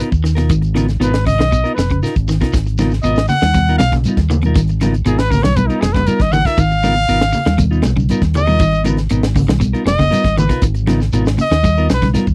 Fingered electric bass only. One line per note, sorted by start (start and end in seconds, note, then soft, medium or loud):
0.13 0.48 D#2 medium
0.51 0.97 G#1 medium
1.00 1.36 G#1 medium
1.39 1.62 B1 loud
1.77 2.01 F1 medium
2.16 2.39 G#1 medium
2.54 3.00 G#1 medium
3.03 3.27 G#1 medium
3.42 3.77 D#2 loud
3.80 4.03 B1 medium
4.18 4.53 D#2 medium
4.56 5.02 G#1 loud
5.05 5.41 G#1 medium
5.45 5.68 B1 medium
5.82 6.06 F1 medium
6.20 6.43 G#1 medium
6.58 7.05 G#1 loud
7.09 7.32 G#1 medium
7.46 7.82 D#2 medium
7.85 8.08 B1 medium
8.22 8.57 D#2 medium
8.60 9.07 G#1 loud
9.11 9.46 G#1 medium
9.49 9.73 B1 loud
9.85 10.09 F1 medium
10.25 10.48 G#1 medium
10.62 11.09 G#1 loud
11.13 11.37 G#1 medium
11.51 11.87 D#2 medium
11.90 12.14 B1 medium
12.27 12.34 D#2 medium